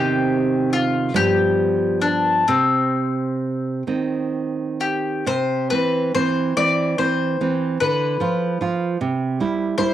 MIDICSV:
0, 0, Header, 1, 3, 480
1, 0, Start_track
1, 0, Key_signature, -3, "minor"
1, 0, Tempo, 832178
1, 912, Tempo, 923077
1, 1385, Time_signature, 6, 3, 24, 8
1, 2832, Key_signature, 0, "major"
1, 2832, Tempo, 875912
1, 3312, Tempo, 820793
1, 4752, Tempo, 774194
1, 5575, End_track
2, 0, Start_track
2, 0, Title_t, "Mandolin"
2, 0, Program_c, 0, 25
2, 0, Note_on_c, 0, 67, 53
2, 400, Note_off_c, 0, 67, 0
2, 420, Note_on_c, 0, 65, 50
2, 646, Note_off_c, 0, 65, 0
2, 669, Note_on_c, 0, 67, 60
2, 1124, Note_off_c, 0, 67, 0
2, 1137, Note_on_c, 0, 62, 42
2, 1364, Note_off_c, 0, 62, 0
2, 1379, Note_on_c, 0, 60, 38
2, 2077, Note_off_c, 0, 60, 0
2, 2589, Note_on_c, 0, 67, 32
2, 2815, Note_off_c, 0, 67, 0
2, 2831, Note_on_c, 0, 72, 49
2, 3058, Note_off_c, 0, 72, 0
2, 3067, Note_on_c, 0, 71, 46
2, 3291, Note_off_c, 0, 71, 0
2, 3311, Note_on_c, 0, 72, 50
2, 3539, Note_off_c, 0, 72, 0
2, 3558, Note_on_c, 0, 74, 52
2, 3784, Note_off_c, 0, 74, 0
2, 3800, Note_on_c, 0, 72, 49
2, 4257, Note_off_c, 0, 72, 0
2, 4280, Note_on_c, 0, 71, 52
2, 5450, Note_off_c, 0, 71, 0
2, 5475, Note_on_c, 0, 72, 50
2, 5575, Note_off_c, 0, 72, 0
2, 5575, End_track
3, 0, Start_track
3, 0, Title_t, "Nylon-string guitar"
3, 0, Program_c, 1, 24
3, 0, Note_on_c, 1, 48, 53
3, 0, Note_on_c, 1, 51, 37
3, 0, Note_on_c, 1, 60, 35
3, 639, Note_off_c, 1, 51, 0
3, 641, Note_off_c, 1, 48, 0
3, 641, Note_off_c, 1, 60, 0
3, 658, Note_on_c, 1, 43, 48
3, 658, Note_on_c, 1, 53, 38
3, 662, Note_on_c, 1, 59, 36
3, 1360, Note_off_c, 1, 53, 0
3, 1361, Note_off_c, 1, 43, 0
3, 1362, Note_off_c, 1, 59, 0
3, 1381, Note_on_c, 1, 48, 34
3, 2078, Note_off_c, 1, 48, 0
3, 2103, Note_on_c, 1, 51, 25
3, 2105, Note_on_c, 1, 60, 29
3, 2812, Note_off_c, 1, 51, 0
3, 2813, Note_off_c, 1, 60, 0
3, 2827, Note_on_c, 1, 48, 43
3, 3066, Note_off_c, 1, 48, 0
3, 3077, Note_on_c, 1, 60, 34
3, 3079, Note_on_c, 1, 52, 30
3, 3290, Note_off_c, 1, 60, 0
3, 3291, Note_off_c, 1, 52, 0
3, 3311, Note_on_c, 1, 52, 34
3, 3315, Note_on_c, 1, 60, 36
3, 3532, Note_off_c, 1, 52, 0
3, 3534, Note_off_c, 1, 60, 0
3, 3557, Note_on_c, 1, 52, 34
3, 3559, Note_on_c, 1, 60, 38
3, 3777, Note_off_c, 1, 52, 0
3, 3778, Note_off_c, 1, 60, 0
3, 3801, Note_on_c, 1, 52, 32
3, 3804, Note_on_c, 1, 60, 35
3, 4019, Note_off_c, 1, 52, 0
3, 4020, Note_off_c, 1, 60, 0
3, 4048, Note_on_c, 1, 52, 31
3, 4051, Note_on_c, 1, 60, 36
3, 4260, Note_off_c, 1, 52, 0
3, 4260, Note_off_c, 1, 60, 0
3, 4284, Note_on_c, 1, 50, 41
3, 4510, Note_off_c, 1, 50, 0
3, 4512, Note_on_c, 1, 53, 33
3, 4518, Note_on_c, 1, 65, 35
3, 4726, Note_off_c, 1, 53, 0
3, 4729, Note_off_c, 1, 65, 0
3, 4750, Note_on_c, 1, 53, 35
3, 4755, Note_on_c, 1, 65, 40
3, 4970, Note_off_c, 1, 53, 0
3, 4973, Note_off_c, 1, 65, 0
3, 4998, Note_on_c, 1, 48, 46
3, 5231, Note_off_c, 1, 48, 0
3, 5242, Note_on_c, 1, 55, 36
3, 5246, Note_on_c, 1, 64, 37
3, 5455, Note_off_c, 1, 55, 0
3, 5455, Note_off_c, 1, 64, 0
3, 5476, Note_on_c, 1, 55, 35
3, 5481, Note_on_c, 1, 64, 39
3, 5575, Note_off_c, 1, 55, 0
3, 5575, Note_off_c, 1, 64, 0
3, 5575, End_track
0, 0, End_of_file